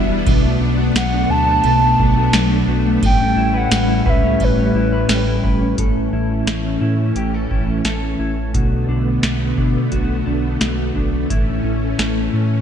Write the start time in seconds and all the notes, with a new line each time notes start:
Already playing: E1 E3 G3 B3 D4 E4 F#4 E5
0.09 G3
0.26 B1 B2 A3, kick, ride
0.44 A3
0.60 B1 D4
0.78 F#4
0.95 B1 F#3 F#5, snare, ride, tambourine
1.13 D4
1.30 D2 F#4 A5
1.48 A3
1.64 B1 B2, ride
1.83 A3
1.99 B1 D4, kick
2.17 F#4
2.33 B1 F#3, snare, ride, tambourine
2.51 D4
2.67 B1 F#4
2.86 A3
3.02 A1 A2 G3 C#4 G5, kick, ride
3.20 C#4
3.36 A1 E4
3.54 B4 F#5
3.71 A1 G3, snare, ride, tambourine
3.88 E4
4.06 C#2 B4 E5, kick
4.23 C#4
4.40 A1 A2 B4, kick, ride
4.59 C#4
4.74 A1 E4
4.93 B4
5.09 A1 G3, snare, ride, tambourine
5.27 E4
5.44 A1 B4, kick
5.61 C#4
5.78 A1 A2 E3 A3 C#4 A4, kick, closed hi-hat
6.13 A1 E4
6.47 A1 C#4, snare, closed hi-hat
6.81 A2 E4
7.16 A1 G4, closed hi-hat
7.34 A4
7.51 A1 E4, kick
7.85 A1 A4, snare, closed hi-hat
8.19 A1 E4
8.53 B1 B2 D3 A3 B3 F#4, kick, closed hi-hat
8.88 B1 D4
9.23 B1 A3, snare, closed hi-hat
9.58 B2 D4, kick
9.92 B1 F#4, kick, closed hi-hat
10.26 B1 D4
10.60 B1 F#4, snare, closed hi-hat
10.95 B1 D4, kick
11.29 A1 A2 E3 C#4 E4, kick, closed hi-hat
11.64 A1 C#4
11.98 A1 A3, snare, closed hi-hat
12.32 A2 C#4